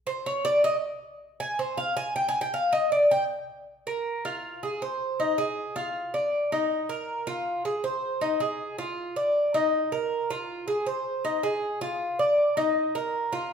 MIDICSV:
0, 0, Header, 1, 2, 480
1, 0, Start_track
1, 0, Tempo, 379027
1, 810, Time_signature, 4, 2, 24, 8
1, 17134, End_track
2, 0, Start_track
2, 0, Title_t, "Cuban tres"
2, 0, Program_c, 0, 25
2, 84, Note_on_c, 0, 72, 90
2, 320, Note_off_c, 0, 72, 0
2, 333, Note_on_c, 0, 73, 86
2, 565, Note_off_c, 0, 73, 0
2, 566, Note_on_c, 0, 74, 107
2, 802, Note_off_c, 0, 74, 0
2, 812, Note_on_c, 0, 75, 100
2, 956, Note_off_c, 0, 75, 0
2, 1774, Note_on_c, 0, 80, 98
2, 2007, Note_off_c, 0, 80, 0
2, 2015, Note_on_c, 0, 72, 82
2, 2247, Note_off_c, 0, 72, 0
2, 2248, Note_on_c, 0, 77, 94
2, 2484, Note_off_c, 0, 77, 0
2, 2489, Note_on_c, 0, 80, 113
2, 2725, Note_off_c, 0, 80, 0
2, 2732, Note_on_c, 0, 79, 90
2, 2889, Note_off_c, 0, 79, 0
2, 2894, Note_on_c, 0, 80, 108
2, 3049, Note_off_c, 0, 80, 0
2, 3054, Note_on_c, 0, 79, 99
2, 3208, Note_off_c, 0, 79, 0
2, 3213, Note_on_c, 0, 77, 86
2, 3447, Note_off_c, 0, 77, 0
2, 3452, Note_on_c, 0, 75, 98
2, 3687, Note_off_c, 0, 75, 0
2, 3697, Note_on_c, 0, 74, 84
2, 3929, Note_off_c, 0, 74, 0
2, 3942, Note_on_c, 0, 79, 110
2, 4085, Note_off_c, 0, 79, 0
2, 4899, Note_on_c, 0, 70, 81
2, 5363, Note_off_c, 0, 70, 0
2, 5383, Note_on_c, 0, 65, 85
2, 5845, Note_off_c, 0, 65, 0
2, 5864, Note_on_c, 0, 68, 82
2, 6093, Note_off_c, 0, 68, 0
2, 6103, Note_on_c, 0, 72, 78
2, 6565, Note_off_c, 0, 72, 0
2, 6581, Note_on_c, 0, 63, 84
2, 6811, Note_off_c, 0, 63, 0
2, 6814, Note_on_c, 0, 68, 86
2, 7280, Note_off_c, 0, 68, 0
2, 7292, Note_on_c, 0, 65, 88
2, 7759, Note_off_c, 0, 65, 0
2, 7775, Note_on_c, 0, 74, 77
2, 8240, Note_off_c, 0, 74, 0
2, 8260, Note_on_c, 0, 63, 92
2, 8722, Note_off_c, 0, 63, 0
2, 8730, Note_on_c, 0, 70, 87
2, 9196, Note_off_c, 0, 70, 0
2, 9206, Note_on_c, 0, 65, 87
2, 9673, Note_off_c, 0, 65, 0
2, 9688, Note_on_c, 0, 68, 81
2, 9922, Note_off_c, 0, 68, 0
2, 9926, Note_on_c, 0, 72, 74
2, 10393, Note_off_c, 0, 72, 0
2, 10402, Note_on_c, 0, 63, 90
2, 10638, Note_off_c, 0, 63, 0
2, 10642, Note_on_c, 0, 68, 82
2, 11110, Note_off_c, 0, 68, 0
2, 11125, Note_on_c, 0, 65, 85
2, 11591, Note_off_c, 0, 65, 0
2, 11605, Note_on_c, 0, 74, 76
2, 12071, Note_off_c, 0, 74, 0
2, 12086, Note_on_c, 0, 63, 94
2, 12551, Note_off_c, 0, 63, 0
2, 12565, Note_on_c, 0, 70, 83
2, 13030, Note_off_c, 0, 70, 0
2, 13048, Note_on_c, 0, 65, 88
2, 13512, Note_off_c, 0, 65, 0
2, 13520, Note_on_c, 0, 68, 78
2, 13755, Note_off_c, 0, 68, 0
2, 13759, Note_on_c, 0, 72, 71
2, 14227, Note_off_c, 0, 72, 0
2, 14242, Note_on_c, 0, 63, 86
2, 14475, Note_off_c, 0, 63, 0
2, 14479, Note_on_c, 0, 68, 86
2, 14947, Note_off_c, 0, 68, 0
2, 14959, Note_on_c, 0, 65, 89
2, 15427, Note_off_c, 0, 65, 0
2, 15441, Note_on_c, 0, 74, 78
2, 15908, Note_off_c, 0, 74, 0
2, 15918, Note_on_c, 0, 63, 94
2, 16387, Note_off_c, 0, 63, 0
2, 16401, Note_on_c, 0, 70, 88
2, 16868, Note_off_c, 0, 70, 0
2, 16875, Note_on_c, 0, 65, 87
2, 17134, Note_off_c, 0, 65, 0
2, 17134, End_track
0, 0, End_of_file